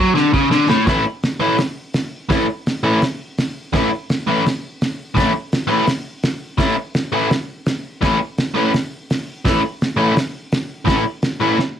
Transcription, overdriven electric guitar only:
0.00 0.15 F#3 loud
0.15 0.33 D3 loud
0.33 0.50 C#3 loud
0.51 0.69 D3 loud
0.69 0.86 A2 loud
0.87 1.02 A2 medium
0.87 1.03 E3 medium
0.87 1.03 A3 medium
0.87 1.03 C#4 medium
0.87 1.03 E4 loud
1.40 1.55 A2 medium
1.40 1.55 E3 medium
1.40 1.56 A3 loud
1.40 1.56 C#4 loud
1.40 1.56 E4 loud
2.29 2.45 A2 medium
2.29 2.45 E3 medium
2.29 2.46 A3 medium
2.29 2.46 C#4 medium
2.29 2.46 E4 medium
2.83 2.98 A2 loud
2.83 2.99 E3 loud
2.83 2.99 A3 loud
2.83 2.99 C#4 loud
2.83 2.99 E4 loud
3.73 3.88 A2 medium
3.73 3.88 E3 medium
3.73 3.89 A3 loud
3.73 3.89 C#4 loud
3.73 3.90 E4 medium
4.27 4.42 A2 medium
4.27 4.42 E3 loud
4.27 4.43 A3 loud
4.27 4.43 C#4 loud
4.27 4.43 E4 loud
5.14 5.30 A2 medium
5.14 5.31 E3 medium
5.14 5.31 A3 medium
5.14 5.31 C#4 medium
5.14 5.31 E4 medium
5.67 5.83 A2 loud
5.67 5.83 E3 loud
5.67 5.84 A3 loud
5.67 5.84 C#4 loud
5.67 5.85 E4 loud
6.58 6.73 A2 medium
6.58 6.74 E3 loud
6.58 6.74 A3 medium
6.58 6.74 C#4 medium
6.58 6.75 E4 medium
7.12 7.27 A2 medium
7.12 7.27 E3 medium
7.12 7.27 A3 loud
7.12 7.28 C#4 loud
7.12 7.28 E4 loud
8.01 8.16 A2 medium
8.01 8.17 E3 loud
8.01 8.17 A3 medium
8.01 8.17 C#4 loud
8.01 8.17 E4 loud
8.55 8.70 A2 loud
8.55 8.71 E3 loud
8.55 8.71 A3 loud
8.55 8.71 C#4 loud
8.55 8.71 E4 loud
9.45 9.60 A2 medium
9.45 9.60 E3 medium
9.45 9.60 A3 medium
9.45 9.61 C#4 medium
9.45 9.61 E4 loud
9.97 10.12 A2 medium
9.97 10.13 E3 medium
9.97 10.13 A3 loud
9.97 10.13 C#4 loud
9.97 10.14 E4 loud
10.85 11.01 A2 medium
10.85 11.02 E3 medium
10.85 11.03 A3 medium
10.85 11.03 C#4 loud
10.85 11.03 E4 medium
11.40 11.56 A2 medium
11.40 11.56 E3 loud
11.40 11.56 A3 loud
11.40 11.57 C#4 loud
11.40 11.57 E4 loud

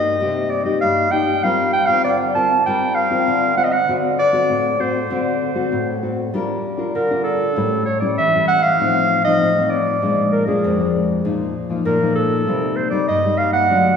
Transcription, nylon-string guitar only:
0.00 0.17 G2 medium
0.00 0.15 A#3 medium
0.00 0.15 D#4 medium
0.00 0.15 G4 medium
0.20 0.79 C3 medium
0.20 0.49 A#3 medium
0.20 0.49 D#4 medium
0.20 0.50 G4 medium
0.65 1.06 A#3 medium
0.65 1.07 D#4 medium
0.65 1.07 G4 medium
0.82 1.40 G2 medium
1.12 1.32 A#3 medium
1.12 1.32 D#4 medium
1.12 1.32 G4 medium
1.43 2.01 G3 medium
1.43 1.72 C4 medium
1.43 1.72 F4 medium
1.43 1.72 A#4 medium
1.88 2.30 C4 medium
1.88 2.30 F4 medium
1.88 2.30 A#4 medium
2.05 2.63 D3 medium
2.35 2.61 C4 medium
2.35 2.61 F4 medium
2.35 2.61 A#4 medium
2.67 3.24 G3 medium
2.67 3.07 C4 soft
2.67 3.07 F4 medium
2.67 3.08 A#4 medium
3.10 3.52 C4 medium
3.10 3.52 F4 medium
3.10 3.53 A#4 medium
3.27 3.85 D3 medium
3.57 3.75 C4 medium
3.57 3.76 F4 soft
3.57 3.76 A#4 medium
3.89 4.47 D3 medium
3.89 4.17 C4 medium
3.89 4.17 F#4 medium
3.89 4.17 A4 medium
4.32 4.74 C4 medium
4.32 4.75 F#4 medium
4.32 4.75 A4 medium
4.49 5.07 A2 medium
4.79 4.98 C4 medium
4.79 4.98 F#4 soft
4.79 4.98 A4 medium
5.10 5.69 D3 medium
5.10 5.52 C4 medium
5.10 5.52 F#4 medium
5.10 5.52 A4 medium
5.55 5.97 C4 medium
5.55 5.97 F#4 medium
5.55 5.97 A4 medium
5.72 6.30 A2 medium
6.02 6.28 C4 medium
6.02 6.29 F#4 medium
6.02 6.29 A4 medium
6.34 6.92 G3 medium
6.34 6.63 D4 medium
6.34 6.63 F4 soft
6.34 6.63 A#4 medium
6.77 7.04 D4 medium
6.77 7.05 F4 medium
6.77 7.05 A#4 medium
6.95 7.53 D3 medium
7.11 7.52 D4 medium
7.11 7.52 F4 medium
7.11 7.52 A#4 medium
7.56 8.15 A2 medium
7.56 7.85 G3 medium
7.56 7.85 C#4 medium
7.56 7.85 E4 medium
8.01 8.27 G3 medium
8.01 8.28 C#4 medium
8.01 8.28 E4 medium
8.19 8.76 E3 medium
8.34 8.75 G3 medium
8.34 8.75 C#4 medium
8.34 8.75 E4 medium
8.80 9.38 A2 medium
8.80 9.21 F3 medium
8.80 9.21 C4 medium
8.80 9.21 D#4 medium
9.25 9.51 F3 medium
9.25 9.51 C4 medium
9.25 9.51 D#4 medium
9.41 9.99 A2 medium
9.57 9.98 F3 medium
9.57 9.98 C4 medium
9.57 9.98 D#4 medium
10.02 10.60 A#2 medium
10.02 10.43 F3 medium
10.02 10.43 G#3 medium
10.02 10.44 D4 medium
10.47 10.73 F3 medium
10.47 10.73 G#3 medium
10.47 10.74 D4 medium
10.64 11.22 F2 medium
10.79 11.20 F3 medium
10.79 11.20 G#3 medium
10.79 11.21 D4 medium
11.25 11.83 A#2 medium
11.25 11.53 F3 medium
11.25 11.54 A#3 medium
11.25 11.54 D#4 medium
11.69 11.96 F3 medium
11.69 11.96 A#3 medium
11.69 11.96 D#4 medium
11.85 12.44 A#2 medium
12.02 12.43 F3 medium
12.02 12.43 A#3 medium
12.02 12.43 D#4 medium
12.47 13.06 C3 medium
12.47 12.89 G3 medium
12.47 12.89 A#3 medium
12.47 12.89 D#4 medium
12.91 13.18 G3 medium
12.91 13.18 A#3 medium
12.91 13.19 D#4 medium
13.08 13.67 G2 medium
13.25 13.66 G3 medium
13.25 13.66 A#3 medium
13.25 13.66 D#4 medium
13.70 13.97 D3 medium
13.70 13.97 F#3 medium
13.70 13.97 A3 medium
13.70 13.97 D4 medium

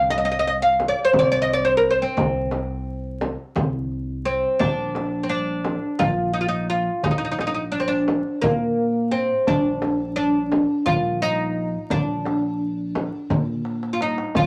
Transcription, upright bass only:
0.00 0.90 C2 medium
1.13 2.00 C2 medium
2.17 3.32 C2 medium
3.56 4.42 C2 medium
4.60 5.75 A#1 medium
6.00 6.86 A#1 medium
7.04 8.19 A#1 medium
8.43 9.30 A#2 medium
9.48 10.63 A#1 medium
10.87 11.73 A#1 loud
11.90 13.06 A#1 medium
13.31 14.17 A#2 medium
14.36 14.46 A#1 medium

